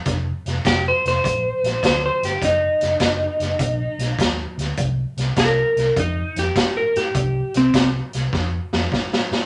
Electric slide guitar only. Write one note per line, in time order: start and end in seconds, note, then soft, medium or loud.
0.67 0.85 G4 medium
0.88 1.05 C5 medium
1.08 1.82 C5 medium
1.86 2.03 C5 medium
2.06 2.23 C5 medium
2.25 2.43 G4 medium
2.45 4.17 D#4 medium
5.40 5.96 A#4 medium
6.00 6.36 D#4 medium
6.39 6.76 G4 medium
6.77 6.95 A#4 medium
6.97 7.53 G4 medium
7.57 7.88 C4 medium